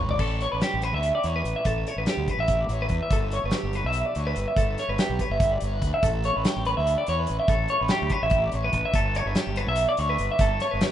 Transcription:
0.01 0.18 G#1 medium
0.09 0.20 D5 medium
0.09 floor tom medium
0.19 0.46 A1 medium
0.19 0.41 A4 medium
0.19 kick medium
0.19 crash medium
0.40 0.51 C#5 medium
0.40 closed hi-hat medium
0.52 0.61 A1 medium
0.52 0.62 B4 medium
0.61 0.83 G4 medium
0.61 snare loud
0.61 closed hi-hat medium
0.74 0.90 A1 medium
0.82 0.93 B4 medium
0.82 closed hi-hat soft
0.93 1.10 D2 medium
0.93 1.14 E5 medium
1.03 closed hi-hat medium
1.15 1.25 D5 medium
1.23 1.41 E2 medium
1.23 1.35 C#5 medium
1.23 closed hi-hat medium
1.36 1.56 B4 medium
1.44 1.53 A1 medium
1.44 closed hi-hat medium
1.56 1.66 E5 medium
1.65 1.83 A1 medium
1.65 1.88 A4 medium
1.65 kick medium
1.65 closed hi-hat medium
1.87 1.97 C#5 medium
1.87 closed hi-hat medium
1.96 2.05 A1 medium
1.96 2.08 B4 medium
2.06 2.29 G4 medium
2.06 snare loud
2.06 closed hi-hat medium
2.17 2.26 D2 medium
2.28 2.39 B4 medium
2.28 kick medium
2.28 closed hi-hat soft
2.37 2.64 A1 medium
2.37 2.61 E5 medium
2.48 kick medium
2.48 closed hi-hat medium
2.61 2.71 D5 medium
2.69 2.87 A1 loud
2.69 2.81 C#5 medium
2.69 closed hi-hat medium
2.82 3.02 B4 medium
2.89 2.99 E2 medium
2.89 kick medium
2.89 closed hi-hat medium
3.03 3.12 E5 medium
3.10 3.38 G1 medium
3.10 3.33 A4 medium
3.10 kick loud
3.10 closed hi-hat medium
3.31 3.43 C#5 medium
3.31 closed hi-hat medium
3.44 3.52 G1 medium
3.44 3.54 B4 medium
3.51 3.75 G4 medium
3.51 snare medium
3.51 closed hi-hat medium
3.63 3.81 G1 medium
3.73 3.85 B4 medium
3.73 closed hi-hat soft
3.84 4.02 B1 medium
3.84 4.06 E5 medium
3.93 closed hi-hat medium
4.06 4.16 D5 medium
4.15 4.33 D2 medium
4.15 4.26 C#5 medium
4.15 closed hi-hat medium
4.27 4.47 B4 medium
4.36 4.45 G1 medium
4.36 closed hi-hat medium
4.48 4.58 E5 medium
4.56 4.75 G1 medium
4.56 4.78 A4 medium
4.56 kick loud
4.56 closed hi-hat medium
4.78 4.89 C#5 medium
4.78 snare soft
4.78 closed hi-hat medium
4.88 4.97 G1 medium
4.88 4.99 B4 medium
4.98 5.20 G4 medium
4.98 snare loud
4.98 closed hi-hat medium
5.09 5.18 B1 medium
5.19 5.31 B4 medium
5.19 kick medium
5.19 closed hi-hat medium
5.30 5.56 G1 medium
5.30 5.52 E5 medium
5.40 kick loud
5.40 closed hi-hat medium
5.52 5.63 D5 medium
5.60 5.79 G1 medium
5.60 5.73 C#5 medium
5.60 closed hi-hat medium
5.73 5.93 B4 medium
5.82 5.91 D2 medium
5.82 kick medium
5.82 closed hi-hat medium
5.94 6.04 E5 medium
6.03 6.29 A1 medium
6.03 6.24 A4 medium
6.03 kick loud
6.03 closed hi-hat medium
6.24 6.36 C#5 medium
6.24 closed hi-hat medium
6.36 6.44 A1 medium
6.36 6.46 B4 medium
6.45 6.66 G4 medium
6.45 snare loud
6.45 closed hi-hat medium
6.56 6.73 A1 medium
6.65 6.76 B4 medium
6.65 closed hi-hat soft
6.77 6.95 D2 medium
6.77 6.97 E5 medium
6.87 closed hi-hat medium
6.98 7.08 D5 medium
7.07 7.25 E2 medium
7.07 7.19 C#5 medium
7.07 closed hi-hat medium
7.19 7.39 B4 medium
7.27 7.38 A1 medium
7.27 closed hi-hat medium
7.40 7.49 E5 medium
7.48 7.66 A1 medium
7.48 7.70 A4 medium
7.48 kick loud
7.48 closed hi-hat medium
7.68 7.81 C#5 medium
7.68 closed hi-hat medium
7.81 7.89 A1 medium
7.81 7.91 B4 medium
7.88 8.12 G4 medium
7.88 snare loud
7.88 closed hi-hat medium
8.02 8.10 D2 medium
8.09 8.22 B4 medium
8.09 kick medium
8.09 closed hi-hat medium
8.23 8.49 A1 medium
8.23 8.44 E5 medium
8.30 kick loud
8.30 closed hi-hat medium
8.44 8.53 D5 medium
8.52 8.71 A1 medium
8.52 8.64 C#5 medium
8.52 closed hi-hat medium
8.64 8.85 B4 medium
8.73 8.82 A1 medium
8.73 kick medium
8.73 closed hi-hat medium
8.85 8.95 E5 medium
8.93 9.21 G1 medium
8.93 9.16 A4 medium
8.93 kick loud
8.93 closed hi-hat medium
9.15 9.27 C#5 medium
9.15 closed hi-hat medium
9.26 9.34 G1 medium
9.26 9.37 B4 medium
9.35 9.57 G4 medium
9.35 snare loud
9.35 closed hi-hat medium
9.47 9.64 G1 medium
9.56 9.68 B4 medium
9.56 closed hi-hat medium
9.67 9.85 B1 medium
9.67 9.88 E5 medium
9.76 closed hi-hat medium
9.89 9.99 D5 medium
9.97 10.16 D2 medium
9.97 10.09 C#5 medium
9.97 closed hi-hat medium
10.10 10.30 B4 medium
10.18 10.28 G1 medium
10.18 closed hi-hat medium
10.32 10.41 E5 medium
10.39 10.57 G1 medium
10.39 10.62 A4 medium
10.39 kick loud
10.39 closed hi-hat medium
10.60 10.72 C#5 medium
10.60 snare soft
10.60 closed hi-hat medium
10.71 10.81 G1 medium
10.71 10.83 B4 medium
10.81 10.92 G4 medium
10.81 snare loud
10.81 closed hi-hat medium

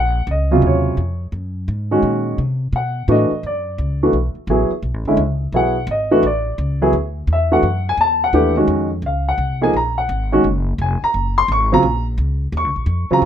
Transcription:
0.00 0.26 A#1 medium
0.00 0.27 F#5 medium
0.27 0.62 C#2 medium
0.31 0.62 D#5 medium
0.51 0.96 C3 medium
0.51 0.96 C#3 medium
0.51 0.96 F#3 medium
0.51 0.96 F4 medium
0.62 0.97 D#2 medium
0.67 1.19 C#5 medium
0.97 1.32 F2 medium
1.32 1.67 F#2 medium
1.68 2.02 G#2 medium
1.91 2.36 D#3 medium
1.91 2.36 G#3 medium
1.91 2.37 C#4 medium
1.91 2.37 F#4 medium
2.03 2.37 A#2 medium
2.38 2.72 C3 medium
2.73 3.07 B2 medium
2.73 3.08 F#5 medium
3.08 3.30 A2 medium
3.08 3.29 E3 medium
3.08 3.29 A3 medium
3.08 3.30 D4 medium
3.08 3.30 F#4 medium
3.08 3.43 D#5 medium
3.32 muted upright bass stroke soft
3.43 3.78 F#2 medium
3.43 3.99 D5 medium
3.78 4.12 C#2 medium
4.03 4.13 E3 medium
4.03 4.13 A3 medium
4.03 4.13 D4 medium
4.03 4.13 F#4 medium
4.13 4.34 B1 medium
4.35 muted upright bass stroke soft
4.47 4.69 A1 medium
4.47 4.70 F#3 medium
4.47 4.70 B3 medium
4.47 4.70 E4 medium
4.47 4.70 G#4 medium
4.70 muted upright bass stroke soft
4.83 4.94 B1 medium
4.94 5.05 A1 medium
5.05 5.16 F#1 medium
5.05 5.18 D3 medium
5.05 5.18 G#3 medium
5.05 5.18 C#4 medium
5.05 5.18 E4 medium
5.17 5.52 C#2 medium
5.52 5.86 B1 medium
5.52 5.75 F#3 medium
5.52 5.75 B3 medium
5.52 5.75 E4 medium
5.52 5.75 G#4 medium
5.52 5.88 F#5 medium
5.87 6.22 G#1 medium
5.91 6.23 D#5 medium
6.11 6.23 E3 medium
6.11 6.23 A3 medium
6.11 6.23 D4 medium
6.11 6.23 F#4 medium
6.23 6.57 A1 medium
6.23 6.79 D5 medium
6.58 6.92 C#2 medium
6.82 6.93 F#3 medium
6.82 6.93 B3 medium
6.82 6.93 E4 medium
6.82 6.93 G#4 medium
6.93 7.27 D2 medium
7.27 7.62 E2 medium
7.33 7.53 E5 medium
7.52 7.63 E3 medium
7.52 7.63 A3 medium
7.52 7.63 D4 medium
7.52 7.63 F#4 medium
7.52 7.85 F#5 medium
7.63 7.97 F#2 medium
7.89 8.00 G#5 medium
7.97 8.32 E2 medium
7.97 8.22 A5 medium
8.24 8.55 F#5 medium
8.33 8.67 D#2 medium
8.33 8.54 E3 medium
8.33 8.54 A3 medium
8.33 8.55 D4 medium
8.33 8.55 G4 medium
8.57 8.87 D#3 medium
8.57 8.87 G#3 medium
8.57 8.87 C#4 medium
8.57 8.87 F#4 medium
8.68 9.01 F2 medium
9.02 9.37 C#2 medium
9.06 9.27 F5 medium
9.28 9.60 F#5 medium
9.38 9.72 C2 medium
9.61 9.72 F3 medium
9.61 9.73 A#3 medium
9.61 9.73 D#4 medium
9.61 9.73 G#4 medium
9.61 9.74 G#5 medium
9.74 10.08 A#1 medium
9.74 9.97 A#5 medium
9.98 10.30 F#5 medium
10.09 10.43 G#1 medium
10.32 10.43 D#3 medium
10.32 10.43 G#3 medium
10.32 10.43 C#4 medium
10.32 10.43 F#4 medium
10.44 10.78 F#1 medium
10.78 11.00 F1 medium
10.78 11.02 G#5 medium
11.02 11.35 A#5 medium
11.02 muted upright bass stroke soft
11.14 11.48 F#1 medium
11.38 11.49 C6 medium
11.48 11.82 G#1 medium
11.48 11.72 C#6 loud
11.72 11.83 C#3 medium
11.72 11.83 F#3 medium
11.72 11.83 C4 medium
11.72 11.83 F4 medium
11.72 12.05 A#5 loud
11.83 12.17 A#1 medium
12.18 12.52 C#2 medium
12.52 12.64 D#2 medium
12.57 13.09 C#6 medium
12.64 12.75 C#2 medium
12.76 12.86 A#1 medium
12.86 13.08 F2 medium
13.10 13.25 C#3 medium
13.10 13.25 F#3 medium
13.10 13.25 C4 medium
13.10 13.25 F4 medium
13.10 13.24 A#5 medium
13.10 muted upright bass stroke soft
13.22 13.25 G#2 medium

